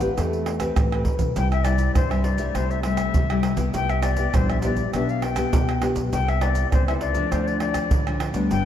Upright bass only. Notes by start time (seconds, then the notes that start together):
0.18 E2
0.77 A1
1.19 B1
1.37 C2
1.96 C2
2.55 C2
3.14 C3
3.57 C2
3.74 C2
4.34 A#1
4.94 B1
5.53 B2
5.95 B1
6.13 C2
6.72 C#2
7.32 D2
7.91 D3
8.34 D2
8.51 G1